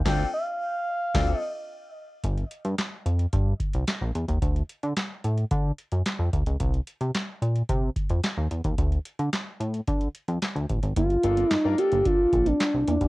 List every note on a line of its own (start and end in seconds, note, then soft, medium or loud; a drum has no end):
0.05 0.24 D2 loud
0.05 0.24 C4 loud
0.05 0.24 D4 loud
0.05 0.24 F4 loud
0.05 0.24 A4 loud
0.05 0.31 G5 loud
0.05 kick loud
0.05 snare loud
0.05 crash medium
0.34 1.40 F5 loud
1.14 1.33 D2 loud
1.14 1.33 C4 loud
1.14 1.33 D4 loud
1.14 1.33 F4 loud
1.14 1.34 A4 loud
1.14 kick loud
1.14 snare loud
1.14 crash medium
1.40 1.93 D#5 loud
2.24 2.45 G1 loud
2.24 kick loud
2.24 closed hi-hat loud
2.38 closed hi-hat soft
2.51 closed hi-hat medium
2.65 2.75 G2 loud
2.65 closed hi-hat soft
2.78 snare loud
2.78 clap medium
2.78 closed hi-hat loud
3.06 3.26 F2 medium
3.06 closed hi-hat medium
3.19 closed hi-hat soft
3.33 3.54 G2 loud
3.33 kick loud
3.33 closed hi-hat medium
3.60 kick medium
3.60 closed hi-hat medium
3.73 3.84 C2 medium
3.73 closed hi-hat medium
3.87 snare loud
3.87 clap medium
3.87 closed hi-hat medium
4.01 4.12 A#1 loud
4.15 4.25 E2 medium
4.15 closed hi-hat medium
4.28 4.39 D#2 loud
4.28 kick medium
4.28 closed hi-hat medium
4.42 4.63 D2 loud
4.42 kick loud
4.42 closed hi-hat medium
4.56 closed hi-hat soft
4.69 closed hi-hat medium
4.83 4.93 D3 medium
4.83 closed hi-hat soft
4.97 snare loud
4.97 clap medium
4.97 closed hi-hat medium
5.24 5.45 A2 medium
5.24 closed hi-hat medium
5.38 closed hi-hat soft
5.51 5.72 D3 loud
5.51 kick loud
5.51 closed hi-hat medium
5.78 closed hi-hat medium
5.92 6.02 F#2 medium
5.92 closed hi-hat soft
6.06 snare loud
6.06 clap medium
6.06 closed hi-hat medium
6.19 6.30 F2 loud
6.33 6.43 D2 medium
6.33 kick medium
6.33 closed hi-hat medium
6.46 6.57 C#2 medium
6.46 closed hi-hat medium
6.60 6.81 C2 loud
6.60 kick loud
6.60 closed hi-hat loud
6.74 closed hi-hat soft
6.87 closed hi-hat medium
7.01 7.11 C3 medium
7.01 closed hi-hat soft
7.15 snare loud
7.15 clap medium
7.15 closed hi-hat loud
7.42 7.63 A#2 medium
7.42 closed hi-hat medium
7.56 closed hi-hat soft
7.69 7.90 C3 loud
7.69 kick loud
7.69 closed hi-hat medium
7.96 kick medium
7.96 closed hi-hat medium
8.10 8.21 F2 medium
8.10 closed hi-hat medium
8.24 snare loud
8.24 clap medium
8.24 closed hi-hat medium
8.37 8.48 D#2 loud
8.51 8.61 E2 medium
8.51 closed hi-hat medium
8.64 8.75 D#2 medium
8.64 kick medium
8.64 closed hi-hat medium
8.78 8.99 D2 loud
8.78 kick loud
8.78 closed hi-hat loud
8.92 closed hi-hat soft
9.05 closed hi-hat medium
9.19 9.30 D3 medium
9.19 closed hi-hat medium
9.33 snare loud
9.33 clap medium
9.33 closed hi-hat medium
9.60 9.81 A2 medium
9.60 closed hi-hat medium
9.74 closed hi-hat soft
9.87 10.08 D3 loud
9.87 kick loud
9.87 closed hi-hat medium
10.01 closed hi-hat soft
10.15 closed hi-hat medium
10.28 10.39 F2 medium
10.28 closed hi-hat medium
10.42 snare loud
10.42 clap medium
10.42 closed hi-hat medium
10.55 10.66 D2 medium
10.55 closed hi-hat soft
10.69 10.80 A1 medium
10.69 kick medium
10.69 closed hi-hat medium
10.83 10.93 G#1 medium
10.83 closed hi-hat medium
10.96 11.17 G1 loud
10.96 11.06 A#3 medium
10.96 11.53 F4 loud
10.96 kick loud
10.96 closed hi-hat loud
11.10 closed hi-hat soft
11.24 11.44 G1 loud
11.24 11.49 A#3 medium
11.24 11.49 D4 medium
11.24 11.49 F4 medium
11.24 11.49 A4 medium
11.24 muted clean electric guitar stroke soft
11.24 closed hi-hat medium
11.37 11.46 C4 medium
11.37 closed hi-hat medium
11.51 11.57 G2 medium
11.51 11.80 D#4 loud
11.51 snare loud
11.51 clap medium
11.51 closed hi-hat loud
11.65 11.75 G2 medium
11.65 11.73 A#3 medium
11.65 11.73 D4 medium
11.65 11.73 F4 medium
11.65 11.74 A#4 loud
11.78 12.46 A#3 medium
11.78 11.87 D4 medium
11.78 12.46 D4 medium
11.78 12.46 F4 medium
11.78 12.08 G4 loud
11.78 12.46 A4 medium
11.78 closed hi-hat medium
11.92 12.03 G1 medium
11.92 12.01 A#3 medium
11.92 closed hi-hat medium
12.05 12.14 D4 medium
12.05 12.48 F4 loud
12.05 kick loud
12.05 closed hi-hat medium
12.32 12.53 A#1 loud
12.32 muted clean electric guitar stroke soft
12.32 kick loud
12.32 closed hi-hat medium
12.46 12.55 C4 medium
12.46 12.87 D4 medium
12.46 closed hi-hat medium
12.60 muted clean electric guitar stroke soft
12.60 snare loud
12.60 clap loud
12.60 closed hi-hat medium
12.74 12.84 C2 medium
12.74 12.83 D4 medium
12.87 12.98 E2 medium
12.87 12.97 A#3 medium
12.87 13.08 D4 loud
12.87 closed hi-hat medium
13.01 13.08 D#2 loud
13.01 kick medium
13.01 closed hi-hat medium